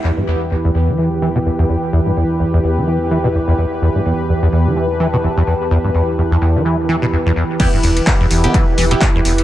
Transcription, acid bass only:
X:1
M:4/4
L:1/16
Q:"Swing 16ths" 1/4=127
K:Em
V:1 name="Acid bass" clef=bass
E,, G,, E,, z E,, E,, E,, E, E, z E, B,, E,, E,, E,, z | E,, G,, E,, z E,, E,, E,, E, E, z E, B,, E,, E,, E,, z | E,, G,, E,, z E,, E,, E,, E, E, z E, B,, E,, E,, E,, z | E,, G,, E,, z E,, E,, E,, E, E, z E, B,, E,, E,, E,, z |
E,, G,, E,, z E,, E,, E,, E, E, z E, B,, E,, E,, E,, z |]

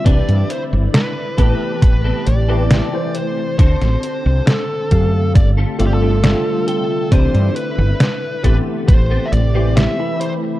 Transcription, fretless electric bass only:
X:1
M:4/4
L:1/16
Q:1/4=68
K:C
V:1 name="Fretless electric bass" clef=bass
C,, G,, z G,,, z2 A,,, z A,,, z A,,,2 z4 | D,, A,,, z C,, z2 ^F,,2 G,,, z G,,,2 z4 | C,, G,, z G,,, z2 A,,, z A,,, z A,,,2 z4 |]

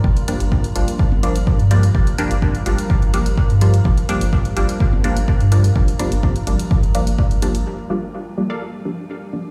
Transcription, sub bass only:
X:1
M:4/4
L:1/16
Q:1/4=126
K:Gm
V:1 name="Sub bass" clef=bass
G,,, z2 G,,,3 G,,, z2 G,,,3 z G,,3 | G,,, z2 G,,,3 G,,, z2 G,,,3 z G,,3 | G,,, z2 G,,,3 G,,, z2 G,,,3 z G,,3 | G,,, z2 G,,,3 G,,, z2 G,,,3 z G,,,3 |
z16 |]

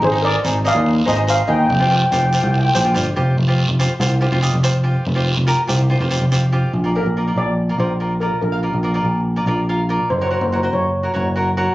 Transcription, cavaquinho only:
X:1
M:4/4
L:1/16
Q:1/4=143
K:Fdor
V:1 name="Cavaquinho"
z [EAc] [EAe] z [EAc] z [EAe]2 z2 [EAc] [EAc] [EAc] z [EAc]2 | z [FGc] [FGc] z [FGc] z [FGc]2 z2 [FGc] [FGc] [FGc] z [FGc]2 | z [FGc]2 z [FGc] z [FGc] z [FGc] [FGc] [FGe] z [FGc] z [FGc]2 | z [FGc]2 z [FGB] z [FGc] z [FGc] [FGc] [FGc] z [FGc] z [FGc]2 |
[K:Bb] z [FBd] [FBd] z [FBd] [FBd]2 z2 [FBd] [FBd] z [FBd] z [FBd]2 | z [FBf] [FBd] z [FBd] [FBd]2 z2 [FBd] [FBd] z [FBf] z [FBd]2 | z [_GB_d] [GBd] z [GBd] [GBc]2 z2 [GBd] [GBd] z [GBd] z [GBd]2 |]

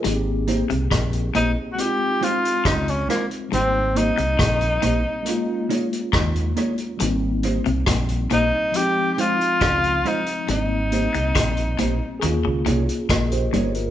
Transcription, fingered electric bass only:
X:1
M:4/4
L:1/16
Q:1/4=69
K:Ab
V:1 name="Fingered electric bass" clef=bass
A,,,3 C,, B,,,2 B,,, z4 z D,,2 z2 | A,,,3 C,, B,,,2 B,,, z4 z E,,2 z2 | A,,,3 C,, B,,,2 B,,, z4 z D,,2 z2 | A,,,3 C,, B,,,2 B,,, z E,, D,, C,, z B,,,2 G,,,2 |]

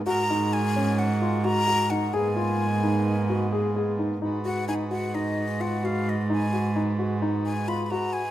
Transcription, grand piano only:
X:1
M:9/8
L:1/8
Q:3/8=87
K:G#dor
V:1 name="Grand piano"
F D2 C2 E F F D | G E2 D2 F G G D | D F D F D2 E F2 | D F D F D2 E F2 |]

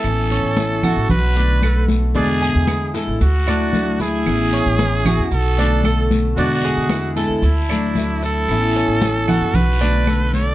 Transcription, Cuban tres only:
X:1
M:4/4
L:1/8
Q:1/4=114
K:A
V:1 name="Cuban tres"
z C2 F2 D A2 | D G2 A2 D2 E- | E C2 F2 D A2 | D G2 A2 D2 E- |
E C2 F2 D A2 |]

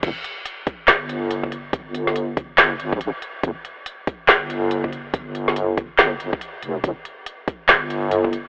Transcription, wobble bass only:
X:1
M:4/4
L:1/16
Q:"Swing 16ths" 1/4=141
K:Gm
V:1 name="Wobble bass" clef=bass
G,,, z6 z G,,,8- | G,,,8 G,,,3 B,,,2 z3 | G,,, z6 z G,,,8- | G,,,8 G,,,3 z3 F,,,2 |
G,,, z6 z G,,,8 |]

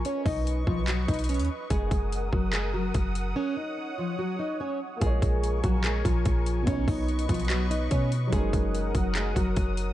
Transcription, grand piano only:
X:1
M:4/4
L:1/8
Q:1/4=145
K:Bbphr
V:1 name="Grand piano"
z8 | z8 | z8 | [B,FAd]8 |
[=B,,=B,^D^c]8 | [G,DEB]8 |]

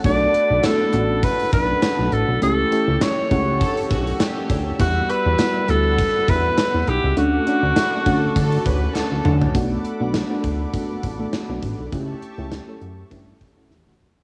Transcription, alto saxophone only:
X:1
M:4/4
L:1/8
Q:"Swing 16ths" 1/4=101
K:Bm
V:1 name="Alto saxophone"
d2 A2 B B2 A | A2 c4 z2 | F B2 A2 B2 G | F6 z2 |
z8 | z8 |]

